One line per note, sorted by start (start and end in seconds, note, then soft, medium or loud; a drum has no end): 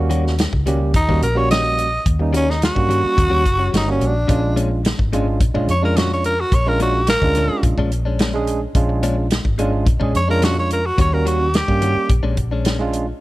0.00 0.46 D#2 loud
0.00 0.33 G3 medium
0.00 0.34 A#3 medium
0.00 0.34 C#4 medium
0.00 0.34 F#4 loud
0.10 0.24 D#3 medium
0.10 0.25 G3 medium
0.10 0.24 C#4 medium
0.10 0.24 F#4 loud
0.10 closed hi-hat medium
0.25 muted clean electric guitar stroke soft
0.25 snare soft
0.38 snare loud
0.38 closed hi-hat medium
0.53 0.94 C#2 loud
0.53 muted clean electric guitar stroke medium
0.53 kick medium
0.66 0.81 D#3 medium
0.66 0.91 G3 medium
0.66 0.80 G3 medium
0.66 0.92 A#3 medium
0.66 0.92 C#4 medium
0.66 0.80 C#4 medium
0.66 0.79 F#4 medium
0.66 0.92 G4 medium
0.66 closed hi-hat medium
0.80 muted clean electric guitar stroke soft
0.94 1.07 D#2 loud
0.94 1.22 D#4 loud
0.94 muted clean electric guitar stroke soft
0.94 kick loud
0.94 closed hi-hat medium
1.08 1.21 D#2 loud
1.08 1.21 D#3 medium
1.08 1.25 G3 medium
1.08 1.21 G3 medium
1.08 1.25 A#3 medium
1.08 1.25 C#4 medium
1.08 1.21 C#4 medium
1.08 1.22 F#4 medium
1.08 1.25 F#4 medium
1.08 kick medium
1.22 1.97 A#1 medium
1.22 1.39 A#4 medium
1.22 closed hi-hat medium
1.35 1.86 G3 medium
1.35 1.49 G3 soft
1.35 1.86 A#3 medium
1.35 1.86 C#4 medium
1.35 1.50 C#4 soft
1.35 1.50 F#4 medium
1.35 1.87 F#4 medium
1.35 1.50 C#5 medium
1.50 1.64 D#3 medium
1.50 1.64 G3 medium
1.50 1.64 C#4 medium
1.50 1.63 F#4 medium
1.50 2.05 D#5 loud
1.50 snare loud
1.50 closed hi-hat medium
1.64 muted clean electric guitar stroke soft
1.78 muted clean electric guitar stroke soft
1.78 closed hi-hat medium
2.06 2.69 D#2 medium
2.06 kick loud
2.06 closed hi-hat medium
2.19 2.54 G3 medium
2.19 2.54 A#3 medium
2.19 2.54 C#4 medium
2.19 2.54 D#4 medium
2.19 muted clean electric guitar stroke soft
2.33 2.48 D#3 medium
2.33 2.47 G3 medium
2.33 2.47 C#4 medium
2.33 2.52 C#4 medium
2.33 2.47 F#4 medium
2.33 closed hi-hat medium
2.48 2.62 D#4 medium
2.48 muted clean electric guitar stroke soft
2.48 snare soft
2.62 3.71 F#4 loud
2.62 snare loud
2.62 closed hi-hat medium
2.75 3.01 G2 medium
2.75 3.42 G3 medium
2.75 3.43 A#3 medium
2.75 3.43 C#4 medium
2.75 3.43 F#4 medium
2.75 muted clean electric guitar stroke soft
2.75 kick medium
2.89 3.03 D#3 medium
2.89 3.02 G3 medium
2.89 3.02 C#4 medium
2.89 3.01 F#4 medium
2.89 closed hi-hat medium
3.03 muted clean electric guitar stroke soft
3.03 muted fingered electric bass stroke soft
3.16 3.31 D#2 medium
3.16 muted clean electric guitar stroke soft
3.16 kick loud
3.16 closed hi-hat medium
3.30 3.44 D#2 medium
3.30 3.43 D#3 medium
3.30 3.44 G3 medium
3.30 3.44 C#4 medium
3.30 3.44 F#4 medium
3.45 3.70 F#1 medium
3.45 kick medium
3.45 closed hi-hat medium
3.58 3.72 G3 soft
3.58 3.73 C#4 soft
3.58 3.73 F#4 medium
3.73 3.99 G1 medium
3.73 3.87 D#3 medium
3.73 3.87 G3 medium
3.73 3.86 C#4 medium
3.73 3.85 F#4 medium
3.73 snare loud
3.73 closed hi-hat medium
3.77 3.89 D#4 medium
3.86 4.12 G3 medium
3.86 4.13 A#3 medium
3.86 4.13 C#4 medium
3.86 4.13 F#4 medium
3.86 muted clean electric guitar stroke soft
3.91 4.08 C#4 medium
4.00 4.26 A#1 medium
4.00 muted clean electric guitar stroke soft
4.00 closed hi-hat medium
4.06 4.58 D4 medium
4.28 4.92 A#1 loud
4.28 4.43 A#2 medium
4.28 4.43 G#3 medium
4.28 4.80 G#3 medium
4.28 4.42 C#4 medium
4.28 4.80 C#4 medium
4.28 4.42 D4 medium
4.28 4.80 D4 medium
4.28 4.80 F4 medium
4.28 kick loud
4.28 closed hi-hat medium
4.43 muted clean electric guitar stroke soft
4.56 4.71 A#2 medium
4.56 4.70 G#3 medium
4.56 4.70 C#4 medium
4.56 4.69 D4 medium
4.56 closed hi-hat medium
4.71 muted clean electric guitar stroke soft
4.85 snare loud
4.85 closed hi-hat medium
4.99 5.40 G#1 medium
4.99 muted clean electric guitar stroke medium
4.99 kick medium
5.13 5.27 A#2 medium
5.13 5.27 G#3 medium
5.13 5.38 G#3 medium
5.13 5.27 C#4 medium
5.13 5.39 C#4 medium
5.13 5.39 D4 medium
5.13 5.26 D4 medium
5.13 5.39 F4 medium
5.13 closed hi-hat medium
5.28 muted clean electric guitar stroke soft
5.40 5.53 A#1 loud
5.40 muted clean electric guitar stroke soft
5.40 kick loud
5.40 closed hi-hat medium
5.54 5.67 A#1 medium
5.54 5.67 A#2 medium
5.54 5.71 G#3 medium
5.54 5.67 G#3 medium
5.54 5.71 C#4 medium
5.54 5.68 C#4 medium
5.54 5.68 D4 medium
5.54 5.72 D4 medium
5.54 5.72 F4 medium
5.54 kick medium
5.68 6.43 F2 medium
5.68 5.83 C#5 medium
5.68 muted clean electric guitar stroke soft
5.68 closed hi-hat medium
5.82 6.33 G#3 medium
5.82 5.95 G#3 soft
5.82 6.33 C#4 medium
5.82 5.96 C#4 medium
5.82 5.96 D4 medium
5.82 6.33 D4 medium
5.82 6.33 F4 medium
5.82 5.99 A#4 medium
5.96 6.11 A#2 medium
5.96 6.11 G#3 medium
5.96 6.10 C#4 medium
5.96 6.10 D4 medium
5.96 6.10 F#4 medium
5.96 snare loud
5.96 closed hi-hat medium
6.11 6.25 C#5 medium
6.11 muted clean electric guitar stroke soft
6.24 6.42 A#4 medium
6.24 muted clean electric guitar stroke soft
6.24 closed hi-hat medium
6.41 6.56 F#4 medium
6.52 7.15 A#1 loud
6.52 6.70 C#5 medium
6.52 kick loud
6.52 closed hi-hat medium
6.66 7.00 G#3 medium
6.66 7.00 C#4 medium
6.66 7.00 D4 medium
6.66 7.01 F4 medium
6.66 6.80 A#4 medium
6.66 muted clean electric guitar stroke soft
6.80 6.94 A#2 medium
6.80 6.95 G#3 medium
6.80 6.94 C#4 medium
6.80 6.94 D4 medium
6.80 7.08 F#4 medium
6.80 closed hi-hat medium
7.07 7.63 A#4 loud
7.07 snare loud
7.07 closed hi-hat medium
7.22 7.47 D2 medium
7.22 7.89 G#3 medium
7.22 7.89 C#4 medium
7.22 7.90 D4 medium
7.22 7.90 F4 medium
7.22 muted clean electric guitar stroke soft
7.22 kick medium
7.35 7.51 A#2 medium
7.35 7.51 G#3 medium
7.35 7.50 C#4 medium
7.35 7.50 D4 medium
7.35 closed hi-hat medium
7.50 muted fingered electric bass stroke soft
7.50 muted clean electric guitar stroke soft
7.63 7.76 A#1 medium
7.63 muted clean electric guitar stroke soft
7.63 kick loud
7.63 closed hi-hat medium
7.77 8.65 A#1 medium
7.77 7.90 A#2 medium
7.77 7.91 G#3 medium
7.77 7.91 C#4 medium
7.77 7.91 D4 medium
7.77 kick medium
7.91 muted clean electric guitar stroke soft
7.91 closed hi-hat medium
8.05 8.19 G#3 soft
8.05 8.19 C#4 medium
8.05 8.19 D4 medium
8.19 8.34 A#2 medium
8.19 8.33 G#3 medium
8.19 8.33 C#4 medium
8.19 8.33 D4 medium
8.19 snare loud
8.19 closed hi-hat medium
8.34 8.59 G#3 loud
8.34 8.59 C#4 medium
8.34 8.60 D4 medium
8.34 8.60 G#4 loud
8.34 muted clean electric guitar stroke soft
8.47 muted clean electric guitar stroke soft
8.47 closed hi-hat medium
8.75 9.38 A#1 medium
8.75 9.26 G#3 medium
8.75 9.26 C#4 medium
8.75 9.26 D4 medium
8.75 9.26 F4 loud
8.75 kick loud
8.75 closed hi-hat medium
8.89 muted clean electric guitar stroke soft
9.03 9.17 A#2 medium
9.03 9.17 G#3 medium
9.03 9.16 C#4 medium
9.03 9.16 D4 loud
9.03 closed hi-hat medium
9.17 muted clean electric guitar stroke medium
9.31 snare loud
9.31 closed hi-hat medium
9.45 9.86 G#1 medium
9.45 muted clean electric guitar stroke soft
9.45 kick medium
9.58 9.73 A#2 medium
9.58 9.84 G#3 medium
9.58 9.72 G#3 medium
9.58 9.72 C#4 medium
9.58 9.85 C#4 medium
9.58 9.71 D4 medium
9.58 9.85 D4 medium
9.58 9.85 F4 loud
9.58 closed hi-hat medium
9.72 muted clean electric guitar stroke soft
9.85 9.99 A#1 loud
9.85 muted clean electric guitar stroke soft
9.85 kick loud
9.85 closed hi-hat medium
10.00 10.13 A#1 medium
10.00 10.12 A#2 medium
10.00 10.13 G#3 medium
10.00 10.18 G#3 medium
10.00 10.13 C#4 medium
10.00 10.18 C#4 medium
10.00 10.13 D4 medium
10.00 10.18 D4 medium
10.00 10.18 G#4 medium
10.00 kick medium
10.14 10.90 F2 medium
10.14 10.29 C#5 medium
10.14 muted clean electric guitar stroke soft
10.14 closed hi-hat medium
10.28 10.79 G#3 medium
10.28 10.41 G#3 soft
10.28 10.41 C#4 soft
10.28 10.79 C#4 medium
10.28 10.42 D4 medium
10.28 10.80 D4 medium
10.28 10.80 F4 medium
10.28 10.46 A#4 medium
10.41 10.56 A#2 medium
10.41 10.56 G#3 medium
10.41 10.56 C#4 medium
10.41 10.55 D4 medium
10.41 10.57 F#4 medium
10.41 snare loud
10.41 closed hi-hat medium
10.56 10.71 C#5 medium
10.56 muted clean electric guitar stroke soft
10.71 10.88 A#4 medium
10.71 muted clean electric guitar stroke soft
10.71 closed hi-hat medium
10.86 10.98 F#4 medium
10.98 11.61 D#2 loud
10.98 11.12 D#3 medium
10.98 11.12 G3 medium
10.98 11.12 C#4 medium
10.98 11.11 F#4 medium
10.98 11.15 C#5 medium
10.98 kick loud
10.98 closed hi-hat medium
11.12 11.46 G3 medium
11.12 11.47 A#3 medium
11.12 11.47 C#4 medium
11.12 11.47 F#4 medium
11.12 11.26 A#4 medium
11.12 muted clean electric guitar stroke soft
11.25 11.40 D#3 medium
11.25 11.40 G3 medium
11.25 11.40 C#4 medium
11.25 11.39 F#4 medium
11.25 11.58 F#4 medium
11.25 closed hi-hat medium
11.40 muted clean electric guitar stroke soft
11.54 12.09 G4 loud
11.54 snare loud
11.54 closed hi-hat medium
11.68 11.94 G2 medium
11.68 12.10 G3 medium
11.68 12.10 A#3 medium
11.68 12.10 C#4 medium
11.68 12.10 G4 medium
11.68 muted clean electric guitar stroke soft
11.68 kick medium
11.82 11.96 D#3 medium
11.82 11.96 G3 medium
11.82 11.95 C#4 medium
11.82 11.95 F#4 medium
11.82 closed hi-hat medium
11.96 muted fingered electric bass stroke soft
12.09 12.23 A#1 medium
12.09 muted clean electric guitar stroke soft
12.09 kick loud
12.09 closed hi-hat medium
12.23 13.11 A#1 medium
12.23 12.36 A#2 medium
12.23 12.37 G#3 medium
12.23 12.37 C#4 medium
12.23 12.37 D4 medium
12.37 muted clean electric guitar stroke soft
12.37 kick medium
12.37 closed hi-hat medium
12.51 12.64 G#3 medium
12.51 12.65 C#4 medium
12.51 12.65 D4 medium
12.65 12.80 A#2 medium
12.65 12.79 G#3 medium
12.65 12.79 C#4 medium
12.65 12.78 D4 medium
12.65 snare loud
12.65 closed hi-hat medium
12.79 13.05 G#3 medium
12.79 13.05 C#4 medium
12.79 13.05 D4 medium
12.79 13.06 F4 loud
12.79 muted clean electric guitar stroke soft
12.93 muted clean electric guitar stroke soft
12.93 closed hi-hat medium